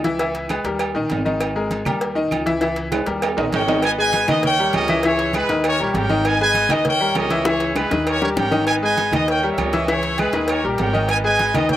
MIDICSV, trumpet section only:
0, 0, Header, 1, 2, 480
1, 0, Start_track
1, 0, Tempo, 302877
1, 311, Time_signature, 4, 2, 24, 8
1, 18650, End_track
2, 0, Start_track
2, 0, Title_t, "Trumpet section"
2, 0, Program_c, 0, 61
2, 5602, Note_on_c, 0, 73, 74
2, 5603, Note_on_c, 0, 70, 76
2, 5604, Note_on_c, 0, 79, 95
2, 6041, Note_off_c, 0, 73, 0
2, 6042, Note_off_c, 0, 70, 0
2, 6042, Note_off_c, 0, 79, 0
2, 6076, Note_on_c, 0, 71, 83
2, 6076, Note_on_c, 0, 75, 77
2, 6084, Note_on_c, 0, 80, 112
2, 6188, Note_off_c, 0, 80, 0
2, 6294, Note_off_c, 0, 75, 0
2, 6307, Note_off_c, 0, 71, 0
2, 6313, Note_on_c, 0, 75, 86
2, 6321, Note_on_c, 0, 80, 123
2, 6326, Note_on_c, 0, 71, 88
2, 6760, Note_off_c, 0, 80, 0
2, 6780, Note_off_c, 0, 75, 0
2, 6799, Note_on_c, 0, 75, 104
2, 6986, Note_off_c, 0, 71, 0
2, 7016, Note_off_c, 0, 75, 0
2, 7025, Note_on_c, 0, 73, 90
2, 7031, Note_on_c, 0, 70, 78
2, 7037, Note_on_c, 0, 79, 109
2, 7478, Note_off_c, 0, 79, 0
2, 7516, Note_off_c, 0, 70, 0
2, 7531, Note_on_c, 0, 67, 72
2, 7532, Note_on_c, 0, 75, 102
2, 7535, Note_on_c, 0, 70, 77
2, 7921, Note_off_c, 0, 73, 0
2, 7965, Note_off_c, 0, 67, 0
2, 7965, Note_off_c, 0, 75, 0
2, 7967, Note_off_c, 0, 70, 0
2, 8000, Note_on_c, 0, 64, 79
2, 8003, Note_on_c, 0, 68, 69
2, 8009, Note_on_c, 0, 73, 97
2, 8443, Note_off_c, 0, 73, 0
2, 8468, Note_off_c, 0, 64, 0
2, 8469, Note_off_c, 0, 68, 0
2, 8487, Note_on_c, 0, 64, 67
2, 8489, Note_on_c, 0, 68, 67
2, 8506, Note_on_c, 0, 71, 91
2, 8922, Note_off_c, 0, 64, 0
2, 8923, Note_off_c, 0, 68, 0
2, 8932, Note_off_c, 0, 71, 0
2, 8979, Note_on_c, 0, 70, 76
2, 8980, Note_on_c, 0, 67, 76
2, 8989, Note_on_c, 0, 73, 111
2, 9188, Note_off_c, 0, 73, 0
2, 9207, Note_on_c, 0, 73, 100
2, 9419, Note_off_c, 0, 73, 0
2, 9443, Note_off_c, 0, 70, 0
2, 9460, Note_on_c, 0, 73, 72
2, 9462, Note_on_c, 0, 70, 76
2, 9470, Note_on_c, 0, 79, 107
2, 9857, Note_off_c, 0, 67, 0
2, 9889, Note_off_c, 0, 70, 0
2, 9889, Note_off_c, 0, 73, 0
2, 9916, Note_on_c, 0, 71, 77
2, 9918, Note_on_c, 0, 75, 80
2, 9925, Note_on_c, 0, 80, 111
2, 9926, Note_off_c, 0, 79, 0
2, 10150, Note_off_c, 0, 71, 0
2, 10153, Note_off_c, 0, 80, 0
2, 10160, Note_off_c, 0, 75, 0
2, 10169, Note_on_c, 0, 71, 82
2, 10179, Note_on_c, 0, 75, 91
2, 10182, Note_on_c, 0, 80, 111
2, 10609, Note_off_c, 0, 80, 0
2, 10627, Note_off_c, 0, 75, 0
2, 10646, Note_on_c, 0, 75, 112
2, 10825, Note_off_c, 0, 71, 0
2, 10873, Note_off_c, 0, 75, 0
2, 10888, Note_on_c, 0, 79, 112
2, 10891, Note_on_c, 0, 70, 85
2, 10892, Note_on_c, 0, 73, 86
2, 11322, Note_off_c, 0, 79, 0
2, 11348, Note_off_c, 0, 70, 0
2, 11367, Note_on_c, 0, 70, 75
2, 11370, Note_on_c, 0, 67, 72
2, 11375, Note_on_c, 0, 75, 94
2, 11773, Note_off_c, 0, 73, 0
2, 11801, Note_off_c, 0, 70, 0
2, 11802, Note_off_c, 0, 67, 0
2, 11805, Note_off_c, 0, 75, 0
2, 11834, Note_on_c, 0, 68, 74
2, 11836, Note_on_c, 0, 64, 71
2, 11846, Note_on_c, 0, 73, 96
2, 12280, Note_off_c, 0, 73, 0
2, 12288, Note_off_c, 0, 64, 0
2, 12289, Note_off_c, 0, 68, 0
2, 12307, Note_on_c, 0, 64, 68
2, 12308, Note_on_c, 0, 68, 70
2, 12322, Note_on_c, 0, 71, 86
2, 12751, Note_off_c, 0, 64, 0
2, 12751, Note_off_c, 0, 68, 0
2, 12783, Note_on_c, 0, 67, 74
2, 12791, Note_off_c, 0, 71, 0
2, 12793, Note_on_c, 0, 70, 71
2, 12797, Note_on_c, 0, 73, 106
2, 13025, Note_off_c, 0, 73, 0
2, 13045, Note_on_c, 0, 73, 96
2, 13147, Note_off_c, 0, 73, 0
2, 13249, Note_off_c, 0, 70, 0
2, 13268, Note_on_c, 0, 70, 67
2, 13269, Note_on_c, 0, 73, 74
2, 13274, Note_on_c, 0, 79, 101
2, 13679, Note_off_c, 0, 67, 0
2, 13711, Note_off_c, 0, 70, 0
2, 13712, Note_off_c, 0, 73, 0
2, 13714, Note_off_c, 0, 79, 0
2, 13735, Note_on_c, 0, 71, 77
2, 13738, Note_on_c, 0, 75, 68
2, 13752, Note_on_c, 0, 80, 103
2, 13857, Note_off_c, 0, 80, 0
2, 13956, Note_off_c, 0, 75, 0
2, 13962, Note_off_c, 0, 71, 0
2, 13975, Note_on_c, 0, 75, 74
2, 13981, Note_on_c, 0, 71, 78
2, 13988, Note_on_c, 0, 80, 108
2, 14431, Note_off_c, 0, 80, 0
2, 14459, Note_off_c, 0, 75, 0
2, 14478, Note_on_c, 0, 75, 96
2, 14651, Note_off_c, 0, 71, 0
2, 14694, Note_off_c, 0, 75, 0
2, 14698, Note_on_c, 0, 73, 79
2, 14706, Note_on_c, 0, 70, 77
2, 14712, Note_on_c, 0, 79, 100
2, 15051, Note_off_c, 0, 79, 0
2, 15070, Note_on_c, 0, 76, 68
2, 15162, Note_off_c, 0, 70, 0
2, 15178, Note_on_c, 0, 67, 66
2, 15181, Note_off_c, 0, 76, 0
2, 15181, Note_on_c, 0, 70, 68
2, 15203, Note_on_c, 0, 75, 92
2, 15597, Note_off_c, 0, 73, 0
2, 15627, Note_off_c, 0, 67, 0
2, 15629, Note_off_c, 0, 70, 0
2, 15673, Note_off_c, 0, 75, 0
2, 15674, Note_on_c, 0, 64, 69
2, 15676, Note_on_c, 0, 68, 65
2, 15689, Note_on_c, 0, 73, 94
2, 16129, Note_off_c, 0, 64, 0
2, 16134, Note_off_c, 0, 68, 0
2, 16148, Note_on_c, 0, 64, 64
2, 16153, Note_on_c, 0, 68, 65
2, 16157, Note_off_c, 0, 73, 0
2, 16169, Note_on_c, 0, 71, 89
2, 16593, Note_off_c, 0, 64, 0
2, 16595, Note_off_c, 0, 68, 0
2, 16604, Note_off_c, 0, 71, 0
2, 16625, Note_on_c, 0, 70, 76
2, 16627, Note_on_c, 0, 67, 65
2, 16636, Note_on_c, 0, 73, 89
2, 16871, Note_off_c, 0, 73, 0
2, 17096, Note_off_c, 0, 70, 0
2, 17115, Note_on_c, 0, 70, 69
2, 17121, Note_on_c, 0, 73, 75
2, 17123, Note_on_c, 0, 79, 95
2, 17523, Note_off_c, 0, 67, 0
2, 17558, Note_off_c, 0, 70, 0
2, 17561, Note_off_c, 0, 73, 0
2, 17562, Note_off_c, 0, 79, 0
2, 17590, Note_on_c, 0, 75, 73
2, 17591, Note_on_c, 0, 71, 77
2, 17597, Note_on_c, 0, 80, 105
2, 17702, Note_off_c, 0, 80, 0
2, 17805, Note_off_c, 0, 75, 0
2, 17807, Note_off_c, 0, 71, 0
2, 17824, Note_on_c, 0, 75, 81
2, 17826, Note_on_c, 0, 71, 81
2, 17833, Note_on_c, 0, 80, 114
2, 18277, Note_off_c, 0, 80, 0
2, 18296, Note_off_c, 0, 75, 0
2, 18315, Note_on_c, 0, 75, 92
2, 18497, Note_off_c, 0, 71, 0
2, 18535, Note_off_c, 0, 75, 0
2, 18552, Note_on_c, 0, 73, 77
2, 18556, Note_on_c, 0, 79, 106
2, 18558, Note_on_c, 0, 70, 77
2, 18650, Note_off_c, 0, 70, 0
2, 18650, Note_off_c, 0, 73, 0
2, 18650, Note_off_c, 0, 79, 0
2, 18650, End_track
0, 0, End_of_file